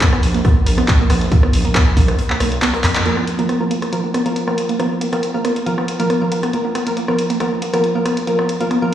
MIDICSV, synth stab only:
0, 0, Header, 1, 2, 480
1, 0, Start_track
1, 0, Tempo, 434783
1, 1453, Time_signature, 4, 2, 24, 8
1, 9871, End_track
2, 0, Start_track
2, 0, Title_t, "Synth stab"
2, 0, Program_c, 0, 62
2, 3373, Note_on_c, 0, 53, 76
2, 3373, Note_on_c, 0, 58, 68
2, 3373, Note_on_c, 0, 70, 81
2, 3709, Note_off_c, 0, 53, 0
2, 3709, Note_off_c, 0, 58, 0
2, 3709, Note_off_c, 0, 70, 0
2, 3739, Note_on_c, 0, 53, 78
2, 3739, Note_on_c, 0, 58, 72
2, 3739, Note_on_c, 0, 70, 86
2, 3815, Note_off_c, 0, 58, 0
2, 3816, Note_off_c, 0, 53, 0
2, 3816, Note_off_c, 0, 70, 0
2, 3979, Note_on_c, 0, 53, 85
2, 3979, Note_on_c, 0, 58, 74
2, 3979, Note_on_c, 0, 70, 91
2, 4102, Note_off_c, 0, 53, 0
2, 4102, Note_off_c, 0, 58, 0
2, 4102, Note_off_c, 0, 70, 0
2, 4334, Note_on_c, 0, 53, 94
2, 4334, Note_on_c, 0, 58, 86
2, 4334, Note_on_c, 0, 70, 104
2, 4418, Note_off_c, 0, 53, 0
2, 4418, Note_off_c, 0, 58, 0
2, 4418, Note_off_c, 0, 70, 0
2, 4700, Note_on_c, 0, 53, 96
2, 4700, Note_on_c, 0, 58, 90
2, 4700, Note_on_c, 0, 70, 111
2, 4823, Note_off_c, 0, 53, 0
2, 4823, Note_off_c, 0, 58, 0
2, 4823, Note_off_c, 0, 70, 0
2, 4940, Note_on_c, 0, 53, 83
2, 4940, Note_on_c, 0, 58, 78
2, 4940, Note_on_c, 0, 70, 93
2, 5063, Note_off_c, 0, 53, 0
2, 5063, Note_off_c, 0, 58, 0
2, 5063, Note_off_c, 0, 70, 0
2, 5293, Note_on_c, 0, 53, 75
2, 5293, Note_on_c, 0, 58, 69
2, 5294, Note_on_c, 0, 70, 82
2, 5629, Note_off_c, 0, 53, 0
2, 5629, Note_off_c, 0, 58, 0
2, 5630, Note_off_c, 0, 70, 0
2, 5660, Note_on_c, 0, 53, 76
2, 5660, Note_on_c, 0, 58, 70
2, 5660, Note_on_c, 0, 70, 86
2, 5736, Note_off_c, 0, 53, 0
2, 5736, Note_off_c, 0, 58, 0
2, 5736, Note_off_c, 0, 70, 0
2, 5899, Note_on_c, 0, 53, 83
2, 5899, Note_on_c, 0, 58, 76
2, 5899, Note_on_c, 0, 70, 95
2, 6022, Note_off_c, 0, 53, 0
2, 6022, Note_off_c, 0, 58, 0
2, 6022, Note_off_c, 0, 70, 0
2, 6253, Note_on_c, 0, 53, 95
2, 6253, Note_on_c, 0, 58, 87
2, 6253, Note_on_c, 0, 70, 103
2, 6338, Note_off_c, 0, 53, 0
2, 6338, Note_off_c, 0, 58, 0
2, 6338, Note_off_c, 0, 70, 0
2, 6620, Note_on_c, 0, 53, 98
2, 6620, Note_on_c, 0, 58, 91
2, 6620, Note_on_c, 0, 70, 110
2, 6743, Note_off_c, 0, 53, 0
2, 6743, Note_off_c, 0, 58, 0
2, 6743, Note_off_c, 0, 70, 0
2, 6860, Note_on_c, 0, 53, 84
2, 6860, Note_on_c, 0, 58, 78
2, 6860, Note_on_c, 0, 70, 94
2, 6982, Note_off_c, 0, 53, 0
2, 6982, Note_off_c, 0, 58, 0
2, 6982, Note_off_c, 0, 70, 0
2, 7213, Note_on_c, 0, 53, 76
2, 7213, Note_on_c, 0, 70, 82
2, 7214, Note_on_c, 0, 58, 68
2, 7549, Note_off_c, 0, 53, 0
2, 7549, Note_off_c, 0, 58, 0
2, 7549, Note_off_c, 0, 70, 0
2, 7580, Note_on_c, 0, 53, 79
2, 7580, Note_on_c, 0, 58, 72
2, 7580, Note_on_c, 0, 70, 85
2, 7656, Note_off_c, 0, 53, 0
2, 7656, Note_off_c, 0, 58, 0
2, 7656, Note_off_c, 0, 70, 0
2, 7820, Note_on_c, 0, 53, 82
2, 7820, Note_on_c, 0, 58, 78
2, 7821, Note_on_c, 0, 70, 91
2, 7943, Note_off_c, 0, 53, 0
2, 7943, Note_off_c, 0, 58, 0
2, 7943, Note_off_c, 0, 70, 0
2, 8173, Note_on_c, 0, 53, 97
2, 8173, Note_on_c, 0, 70, 104
2, 8174, Note_on_c, 0, 58, 84
2, 8258, Note_off_c, 0, 53, 0
2, 8258, Note_off_c, 0, 58, 0
2, 8258, Note_off_c, 0, 70, 0
2, 8539, Note_on_c, 0, 53, 100
2, 8539, Note_on_c, 0, 58, 89
2, 8539, Note_on_c, 0, 70, 107
2, 8662, Note_off_c, 0, 53, 0
2, 8662, Note_off_c, 0, 58, 0
2, 8662, Note_off_c, 0, 70, 0
2, 8779, Note_on_c, 0, 53, 82
2, 8779, Note_on_c, 0, 58, 77
2, 8779, Note_on_c, 0, 70, 90
2, 8902, Note_off_c, 0, 53, 0
2, 8902, Note_off_c, 0, 58, 0
2, 8902, Note_off_c, 0, 70, 0
2, 9133, Note_on_c, 0, 53, 75
2, 9133, Note_on_c, 0, 58, 70
2, 9133, Note_on_c, 0, 70, 81
2, 9469, Note_off_c, 0, 53, 0
2, 9469, Note_off_c, 0, 58, 0
2, 9469, Note_off_c, 0, 70, 0
2, 9499, Note_on_c, 0, 53, 76
2, 9499, Note_on_c, 0, 58, 71
2, 9499, Note_on_c, 0, 70, 87
2, 9575, Note_off_c, 0, 70, 0
2, 9576, Note_off_c, 0, 53, 0
2, 9576, Note_off_c, 0, 58, 0
2, 9738, Note_on_c, 0, 53, 85
2, 9738, Note_on_c, 0, 70, 91
2, 9739, Note_on_c, 0, 58, 77
2, 9862, Note_off_c, 0, 53, 0
2, 9862, Note_off_c, 0, 58, 0
2, 9862, Note_off_c, 0, 70, 0
2, 9871, End_track
0, 0, End_of_file